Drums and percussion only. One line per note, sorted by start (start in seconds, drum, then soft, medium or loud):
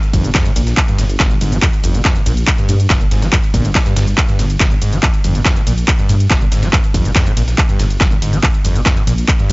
0.03 closed hi-hat soft
0.03 closed hi-hat medium
0.13 kick medium
0.13 closed hi-hat medium
0.13 open hi-hat loud
0.13 ride medium
0.13 shaker medium
0.24 closed hi-hat medium
0.24 shaker soft
0.35 kick loud
0.35 snare loud
0.35 clap loud
0.35 closed hi-hat medium
0.35 ride medium
0.35 shaker soft
0.46 closed hi-hat soft
0.46 closed hi-hat medium
0.56 closed hi-hat medium
0.56 open hi-hat loud
0.56 ride medium
0.56 shaker medium
0.67 snare soft
0.67 closed hi-hat medium
0.67 shaker soft
0.77 kick loud
0.77 clap loud
0.77 closed hi-hat medium
0.77 shaker soft
0.88 closed hi-hat soft
0.88 closed hi-hat medium
0.98 snare medium
0.98 closed hi-hat medium
0.98 open hi-hat loud
0.98 ride medium
0.98 shaker medium
1.09 closed hi-hat medium
1.09 shaker soft
1.20 kick loud
1.20 snare loud
1.20 clap loud
1.20 closed hi-hat medium
1.20 shaker soft
1.31 closed hi-hat medium
1.41 closed hi-hat medium
1.41 open hi-hat loud
1.41 ride medium
1.41 shaker medium
1.52 closed hi-hat soft
1.52 closed hi-hat medium
1.52 shaker soft
1.62 kick loud
1.62 clap loud
1.62 closed hi-hat medium
1.62 open hi-hat medium
1.73 closed hi-hat medium
1.83 closed hi-hat medium
1.83 open hi-hat loud
1.83 ride medium
1.83 shaker medium
1.94 closed hi-hat medium
1.94 shaker soft
2.05 kick loud
2.05 snare loud
2.05 clap loud
2.05 closed hi-hat medium
2.05 shaker soft
2.16 closed hi-hat medium
2.16 closed hi-hat soft
2.26 closed hi-hat medium
2.26 open hi-hat loud
2.26 ride medium
2.26 shaker medium
2.37 closed hi-hat soft
2.37 closed hi-hat medium
2.37 shaker soft
2.47 kick loud
2.47 clap loud
2.47 closed hi-hat medium
2.58 closed hi-hat medium
2.69 closed hi-hat medium
2.69 open hi-hat loud
2.69 ride medium
2.69 shaker medium
2.80 closed hi-hat medium
2.80 shaker soft
2.90 kick loud
2.90 snare loud
2.90 clap loud
2.90 closed hi-hat medium
2.90 ride medium
3.01 closed hi-hat medium
3.11 snare soft
3.11 closed hi-hat medium
3.11 open hi-hat loud
3.11 ride medium
3.11 shaker medium
3.22 snare medium
3.22 closed hi-hat medium
3.22 shaker soft
3.33 kick loud
3.33 clap loud
3.33 closed hi-hat medium
3.44 closed hi-hat soft
3.44 closed hi-hat medium
3.54 kick medium
3.54 closed hi-hat medium
3.54 open hi-hat loud
3.54 ride medium
3.54 shaker medium
3.65 closed hi-hat medium
3.65 shaker soft
3.75 kick loud
3.75 snare loud
3.75 clap loud
3.75 closed hi-hat medium
3.75 open hi-hat medium
3.75 ride medium
3.75 shaker soft
3.86 closed hi-hat medium
3.86 closed hi-hat soft
3.96 snare loud
3.96 closed hi-hat medium
3.96 open hi-hat loud
3.96 ride medium
3.96 shaker medium
4.07 closed hi-hat medium
4.07 shaker soft
4.18 kick loud
4.18 clap loud
4.18 closed hi-hat medium
4.29 closed hi-hat medium
4.29 closed hi-hat soft
4.39 snare medium
4.39 closed hi-hat medium
4.39 open hi-hat loud
4.39 ride medium
4.39 shaker medium
4.50 closed hi-hat medium
4.50 shaker soft
4.60 kick loud
4.60 snare loud
4.60 clap loud
4.60 closed hi-hat medium
4.71 closed hi-hat medium
4.82 closed hi-hat medium
4.82 open hi-hat loud
4.82 ride medium
4.82 shaker medium
4.93 closed hi-hat soft
4.93 closed hi-hat medium
4.93 shaker soft
5.03 kick loud
5.03 clap loud
5.03 closed hi-hat medium
5.03 open hi-hat medium
5.03 shaker soft
5.14 closed hi-hat medium
5.24 closed hi-hat medium
5.24 open hi-hat loud
5.24 ride medium
5.24 shaker medium
5.35 closed hi-hat medium
5.35 shaker soft
5.45 kick loud
5.45 snare loud
5.45 clap loud
5.45 closed hi-hat medium
5.45 shaker soft
5.56 closed hi-hat soft
5.56 closed hi-hat medium
5.67 closed hi-hat medium
5.67 open hi-hat loud
5.67 ride medium
5.67 shaker medium
5.78 closed hi-hat soft
5.78 closed hi-hat medium
5.78 shaker soft
5.88 kick loud
5.88 clap loud
5.88 closed hi-hat medium
5.88 shaker soft
5.99 closed hi-hat medium
6.09 closed hi-hat medium
6.09 open hi-hat loud
6.09 ride medium
6.09 shaker medium
6.20 closed hi-hat medium
6.20 shaker soft
6.30 kick loud
6.30 snare loud
6.30 clap loud
6.30 closed hi-hat medium
6.30 shaker soft
6.41 closed hi-hat medium
6.52 snare soft
6.52 closed hi-hat medium
6.52 open hi-hat loud
6.52 ride medium
6.52 shaker medium
6.63 snare medium
6.63 closed hi-hat medium
6.63 shaker soft
6.73 kick loud
6.73 clap loud
6.73 closed hi-hat loud
6.73 closed hi-hat medium
6.73 shaker soft
6.84 closed hi-hat medium
6.84 closed hi-hat soft
6.94 kick medium
6.94 closed hi-hat medium
6.94 open hi-hat loud
6.94 ride medium
6.94 shaker medium
7.05 closed hi-hat medium
7.05 shaker soft
7.16 kick loud
7.16 snare loud
7.16 clap loud
7.16 closed hi-hat medium
7.16 shaker soft
7.26 closed hi-hat soft
7.26 closed hi-hat medium
7.37 closed hi-hat medium
7.37 open hi-hat loud
7.37 ride medium
7.37 shaker medium
7.48 snare soft
7.48 closed hi-hat medium
7.48 shaker soft
7.58 kick loud
7.58 clap loud
7.58 closed hi-hat medium
7.58 ride medium
7.58 shaker soft
7.69 closed hi-hat soft
7.69 closed hi-hat medium
7.79 snare medium
7.79 closed hi-hat medium
7.79 open hi-hat loud
7.79 ride medium
7.79 shaker medium
7.90 closed hi-hat medium
7.90 shaker soft
8.01 kick loud
8.01 snare loud
8.01 clap loud
8.01 closed hi-hat loud
8.01 closed hi-hat medium
8.01 shaker soft
8.12 closed hi-hat medium
8.22 closed hi-hat medium
8.22 open hi-hat loud
8.22 ride medium
8.22 shaker medium
8.33 closed hi-hat soft
8.33 closed hi-hat medium
8.33 shaker soft
8.43 kick loud
8.43 clap loud
8.43 closed hi-hat medium
8.43 open hi-hat medium
8.43 shaker soft
8.54 closed hi-hat medium
8.64 closed hi-hat medium
8.64 open hi-hat loud
8.64 ride medium
8.64 shaker medium
8.76 closed hi-hat medium
8.76 shaker soft
8.86 kick loud
8.86 snare loud
8.86 clap loud
8.86 closed hi-hat medium
8.86 shaker soft
8.97 closed hi-hat soft
8.97 closed hi-hat medium
9.07 closed hi-hat medium
9.07 open hi-hat loud
9.07 ride medium
9.07 shaker medium
9.18 closed hi-hat soft
9.18 closed hi-hat medium
9.18 shaker soft
9.28 kick loud
9.28 clap loud
9.28 closed hi-hat medium
9.28 shaker soft
9.39 closed hi-hat medium